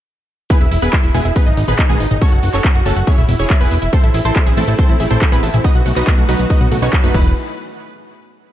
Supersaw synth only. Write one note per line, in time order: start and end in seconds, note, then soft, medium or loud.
0.50 0.59 B3 medium
0.50 0.59 E4 medium
0.50 0.59 G#4 medium
0.50 0.59 B4 loud
0.61 0.69 E4 medium
0.72 0.80 E4 medium
0.82 0.91 B3 medium
0.82 0.91 E4 medium
0.82 0.91 G#4 medium
0.82 0.91 B4 medium
0.93 1.02 E4 medium
1.04 1.12 E4 medium
1.15 1.23 G#3 medium
1.15 1.23 B3 medium
1.15 1.23 E4 medium
1.15 1.23 G#4 medium
1.25 1.34 E4 medium
1.36 1.44 B3 medium
1.36 1.44 D#4 medium
1.36 1.44 G#4 medium
1.36 1.44 B4 medium
1.47 1.55 D#4 medium
1.57 1.66 D#4 medium
1.68 1.77 B3 medium
1.68 1.77 D#4 medium
1.68 1.77 G#4 medium
1.68 1.77 B4 medium
1.79 1.87 D#4 medium
1.90 1.98 G#3 medium
1.90 1.98 B3 medium
1.90 1.98 D#4 medium
1.90 1.98 G#4 medium
2.00 2.09 D#4 medium
2.11 2.20 D#4 medium
2.22 2.30 C#4 medium
2.22 2.30 F#4 medium
2.22 2.30 A4 medium
2.22 2.30 C#5 loud
2.33 2.41 F#4 medium
2.43 2.52 F#4 medium
2.54 2.62 C#4 medium
2.54 2.62 F#4 medium
2.54 2.62 A4 medium
2.54 2.62 C#5 medium
2.75 2.84 F#4 medium
2.86 2.95 A3 medium
2.86 2.95 C#4 medium
2.86 2.95 F#4 medium
2.86 2.95 A4 medium
2.97 3.05 F#4 medium
3.07 3.16 C#4 medium
3.07 3.16 E4 medium
3.07 3.16 G#4 medium
3.07 3.16 C#5 loud
3.18 3.27 E4 medium
3.29 3.37 E4 medium
3.40 3.48 C#4 medium
3.40 3.48 E4 medium
3.40 3.48 G#4 medium
3.40 3.48 C#5 medium
3.61 3.69 B3 medium
3.61 3.69 E4 medium
3.61 3.69 G#4 medium
3.61 3.69 B4 loud
3.72 3.80 E4 medium
3.82 3.91 E4 medium
3.93 4.02 C4 medium
3.93 4.02 E4 medium
3.93 4.02 A4 medium
3.93 4.02 C5 loud
4.04 4.12 E4 medium
4.14 4.23 E4 medium
4.25 4.34 C4 medium
4.25 4.34 E4 medium
4.25 4.34 A4 medium
4.25 4.34 C5 loud
4.36 4.44 E4 medium
4.47 4.55 E4 medium
4.57 4.66 A3 medium
4.57 4.66 C4 medium
4.57 4.66 E4 medium
4.57 4.66 A4 medium
4.68 4.77 E4 medium
4.79 4.87 C4 medium
4.79 4.87 E4 medium
4.79 4.87 A4 medium
4.79 4.87 C5 medium
4.89 4.98 E4 medium
5.00 5.09 E4 medium
5.11 5.19 C4 medium
5.11 5.19 E4 medium
5.11 5.19 A4 medium
5.11 5.19 C5 medium
5.32 5.41 B3 medium
5.32 5.41 C4 medium
5.32 5.41 E4 medium
5.32 5.41 B4 loud
5.43 5.51 E4 medium
5.54 5.62 E4 medium
5.64 5.73 D#4 medium
5.64 5.73 F#4 medium
5.64 5.73 B4 medium
5.64 5.73 D#5 loud
5.75 5.84 F#4 medium
5.86 5.94 F#4 medium
5.96 6.05 D#4 medium
5.96 6.05 F#4 medium
5.96 6.05 B4 medium
5.96 6.05 D#5 medium
6.18 6.27 F#4 medium
6.29 6.37 B3 medium
6.29 6.37 D#4 medium
6.29 6.37 F#4 medium
6.29 6.37 B4 medium
6.40 6.48 F#4 medium
6.50 6.59 D#4 medium
6.50 6.59 F#4 medium
6.50 6.59 B4 medium
6.50 6.59 D#5 medium
6.61 6.69 F#4 medium
6.72 6.80 F#4 medium
6.82 6.91 C#4 medium
6.82 6.91 D#4 medium
6.82 6.91 F#4 medium
6.82 6.91 C#5 medium
6.93 7.02 F#4 medium
7.04 7.12 B3 medium
7.04 7.12 D#4 medium
7.04 7.12 F#4 medium
7.04 7.12 B4 medium
7.15 7.30 B4 loud